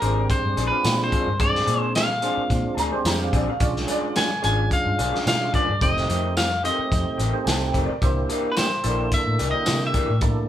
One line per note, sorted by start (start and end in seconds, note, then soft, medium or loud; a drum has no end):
0.00 0.26 G#1 medium
0.00 0.20 F3 medium
0.00 0.59 G#3 medium
0.00 0.60 C4 medium
0.00 0.20 C4 medium
0.00 0.59 D4 medium
0.00 0.19 D4 medium
0.00 0.60 G4 medium
0.00 0.19 G#4 medium
0.00 0.30 A#4 medium
0.00 closed hi-hat medium
0.30 0.67 C5 medium
0.30 kick medium
0.30 closed hi-hat medium
0.45 0.56 G2 medium
0.57 0.70 A#1 medium
0.57 0.75 F3 medium
0.57 0.75 C4 medium
0.57 0.75 D4 medium
0.57 0.74 G#4 medium
0.57 closed hi-hat medium
0.67 1.29 G#3 medium
0.67 1.29 C4 medium
0.67 1.03 B4 medium
0.72 1.29 D4 medium
0.72 1.29 F4 medium
0.84 1.08 A#2 medium
0.84 snare loud
0.84 closed hi-hat medium
0.84 tambourine loud
1.04 1.38 C5 medium
1.12 1.30 F3 medium
1.12 1.30 C4 medium
1.12 1.30 D4 medium
1.12 1.30 G#4 medium
1.12 kick medium
1.12 closed hi-hat medium
1.27 1.62 G2 medium
1.40 2.10 G#3 medium
1.40 2.10 C4 medium
1.40 2.10 D4 medium
1.40 2.10 G#4 medium
1.40 1.92 D5 medium
1.40 kick loud
1.40 closed hi-hat medium
1.55 snare soft
1.67 2.28 A#2 medium
1.67 1.85 F3 medium
1.67 1.85 C4 medium
1.67 1.85 D4 medium
1.67 1.84 G#4 medium
1.67 closed hi-hat medium
1.95 2.74 F5 medium
1.95 snare loud
1.95 closed hi-hat medium
1.95 tambourine loud
2.22 2.40 F3 medium
2.22 2.80 G#3 medium
2.22 2.80 C4 medium
2.22 2.40 C4 medium
2.22 2.81 D4 medium
2.22 2.40 D4 medium
2.22 2.81 F4 medium
2.22 2.40 G#4 medium
2.22 closed hi-hat medium
2.37 muted fingered electric bass stroke soft
2.50 2.63 A#2 medium
2.50 kick medium
2.50 closed hi-hat medium
2.64 muted fingered electric bass stroke soft
2.74 2.90 D2 medium
2.74 2.95 F3 medium
2.74 2.95 C4 medium
2.74 2.95 D4 medium
2.74 2.95 G#4 medium
2.74 2.78 A5 medium
2.74 closed hi-hat medium
2.79 2.92 A#5 loud
2.91 3.50 G#3 medium
2.91 3.50 C4 medium
2.91 3.50 D4 medium
2.91 3.50 G4 medium
2.91 3.05 C6 medium
3.05 3.29 F2 medium
3.05 3.20 A#5 medium
3.05 snare loud
3.05 closed hi-hat medium
3.05 tambourine loud
3.22 3.33 F5 medium
3.33 3.46 A#1 medium
3.33 3.51 F3 medium
3.33 3.51 C4 medium
3.33 3.51 D4 medium
3.33 3.50 G#4 medium
3.33 3.48 D5 medium
3.33 kick medium
3.33 closed hi-hat medium
3.50 3.61 F5 medium
3.60 3.84 B1 loud
3.60 4.31 G#3 medium
3.60 4.30 C#4 medium
3.60 4.31 D4 medium
3.60 4.31 F4 medium
3.60 3.88 D5 medium
3.60 kick loud
3.60 closed hi-hat medium
3.76 snare soft
3.87 4.06 F3 medium
3.87 4.06 B3 medium
3.87 4.05 D4 medium
3.87 4.05 G#4 medium
3.87 3.90 C#5 medium
3.87 closed hi-hat medium
3.92 4.17 D5 loud
4.16 4.43 G#5 loud
4.16 snare loud
4.16 closed hi-hat medium
4.16 tambourine loud
4.42 4.67 G#1 medium
4.42 4.61 F3 medium
4.42 5.00 G#3 medium
4.42 4.61 B3 medium
4.42 5.00 C#4 medium
4.42 5.01 D4 medium
4.42 4.61 D4 medium
4.42 5.01 F4 medium
4.42 4.60 G#4 medium
4.42 4.70 G#5 loud
4.42 closed hi-hat medium
4.71 5.27 F5 loud
4.71 kick medium
4.71 closed hi-hat medium
4.86 4.97 G2 medium
4.99 5.12 B1 medium
4.99 5.16 F3 medium
4.99 5.16 B3 medium
4.99 5.16 D4 medium
4.99 5.16 G#4 medium
4.99 closed hi-hat medium
5.13 5.70 G#3 medium
5.13 5.70 C#4 medium
5.13 5.71 D4 medium
5.13 5.70 F4 medium
5.13 snare soft
5.26 5.50 B2 medium
5.26 5.55 F5 medium
5.26 snare loud
5.26 closed hi-hat medium
5.26 tambourine loud
5.53 5.71 F3 medium
5.53 5.71 B3 medium
5.53 5.71 D4 medium
5.53 5.70 G#4 medium
5.53 5.82 D5 medium
5.53 kick medium
5.53 closed hi-hat medium
5.69 5.79 G2 medium
5.81 6.05 F1 loud
5.81 6.51 A3 medium
5.81 6.51 C4 medium
5.81 6.52 D#4 medium
5.81 6.52 G4 medium
5.81 6.37 D#5 medium
5.81 kick loud
5.81 closed hi-hat medium
5.97 snare soft
6.09 6.69 F2 medium
6.09 6.27 D#3 medium
6.09 6.26 A3 medium
6.09 6.26 C4 medium
6.09 6.26 G4 medium
6.09 closed hi-hat medium
6.37 6.62 F5 medium
6.37 snare loud
6.37 closed hi-hat medium
6.37 tambourine loud
6.63 6.81 D#3 medium
6.63 7.21 A3 medium
6.63 6.81 A3 medium
6.63 6.81 C4 medium
6.63 7.22 C4 medium
6.63 7.22 D#4 medium
6.63 6.81 G4 medium
6.63 7.22 G4 medium
6.63 7.71 D#5 medium
6.63 closed hi-hat medium
6.79 muted fingered electric bass stroke soft
6.92 7.04 F2 medium
6.92 kick medium
6.92 closed hi-hat medium
7.18 7.31 A1 medium
7.18 7.36 D#3 medium
7.18 7.36 A3 medium
7.18 7.36 C4 medium
7.18 7.36 G4 medium
7.18 closed hi-hat medium
7.33 7.91 A3 medium
7.33 7.91 C4 medium
7.33 7.91 D#4 medium
7.33 7.91 G4 medium
7.45 7.70 C2 medium
7.45 7.48 G#5 medium
7.45 snare loud
7.45 closed hi-hat medium
7.45 tambourine loud
7.49 7.66 A5 medium
7.68 7.84 G5 medium
7.74 7.87 F1 medium
7.74 7.92 D#3 medium
7.74 7.92 A3 medium
7.74 7.91 C4 medium
7.74 7.91 G4 medium
7.74 kick medium
7.74 closed hi-hat medium
7.86 8.02 D5 medium
8.02 8.26 C2 medium
8.02 8.72 A#3 medium
8.02 8.72 D4 medium
8.02 8.72 E4 medium
8.02 8.72 G4 medium
8.02 8.44 C5 medium
8.02 kick loud
8.02 closed hi-hat medium
8.29 8.47 E3 medium
8.29 8.47 A#3 medium
8.29 8.47 D4 medium
8.29 8.46 G4 medium
8.29 closed hi-hat medium
8.52 8.57 B4 medium
8.57 9.13 C5 medium
8.57 snare loud
8.57 closed hi-hat medium
8.57 tambourine loud
8.83 9.08 A#1 medium
8.83 9.02 E3 medium
8.83 9.41 A#3 medium
8.83 9.02 A#3 medium
8.83 9.42 D4 medium
8.83 9.02 D4 medium
8.83 9.42 E4 medium
8.83 9.01 G4 medium
8.83 9.42 A4 medium
8.83 closed hi-hat medium
9.12 9.51 E5 medium
9.12 kick medium
9.12 closed hi-hat medium
9.27 9.38 A2 medium
9.39 9.53 C2 medium
9.39 9.57 E3 medium
9.39 9.57 A#3 medium
9.39 9.57 D4 medium
9.39 9.56 G4 medium
9.39 closed hi-hat medium
9.51 10.11 D3 medium
9.51 10.11 A#3 medium
9.51 10.11 E4 medium
9.51 10.11 G4 medium
9.51 9.86 D#5 medium
9.66 9.91 C3 medium
9.66 snare loud
9.66 closed hi-hat medium
9.66 tambourine loud
9.87 10.20 E5 medium
9.94 10.12 E3 soft
9.94 10.12 A#3 medium
9.94 10.12 D4 medium
9.94 10.11 G4 medium
9.94 kick medium
9.94 closed hi-hat medium
10.09 10.44 A2 medium
10.21 10.49 A#3 medium
10.21 10.49 D4 medium
10.21 10.49 E4 medium
10.21 10.49 A4 medium
10.21 kick loud
10.21 closed hi-hat medium